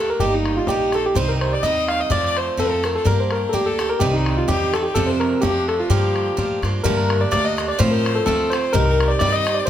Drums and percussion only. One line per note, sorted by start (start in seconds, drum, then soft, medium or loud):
0.20 bodhran medium
0.46 bodhran medium
0.67 bodhran medium
0.80 bodhran soft
0.92 bodhran medium
1.16 bodhran medium
1.41 bodhran medium
1.63 bodhran medium
1.76 bodhran soft
1.88 bodhran medium
2.10 bodhran medium
2.37 bodhran medium
2.59 bodhran medium
2.71 bodhran soft
2.84 bodhran medium
3.05 bodhran medium
3.31 bodhran medium
3.54 bodhran medium
3.66 bodhran soft
3.79 bodhran medium
4.01 bodhran medium
4.26 bodhran medium
4.48 bodhran medium
4.62 bodhran soft
4.74 bodhran medium
4.96 bodhran medium
5.21 bodhran medium
5.43 bodhran medium
5.69 bodhran medium
5.90 bodhran medium
6.16 bodhran medium
6.38 bodhran medium
6.51 bodhran soft
6.63 bodhran medium
6.85 bodhran loud
7.10 bodhran medium
7.33 bodhran medium
7.58 bodhran medium
7.80 bodhran medium
8.06 bodhran medium
8.27 bodhran medium
8.53 bodhran medium
8.75 bodhran medium
9.00 bodhran medium
9.21 bodhran medium
9.47 bodhran medium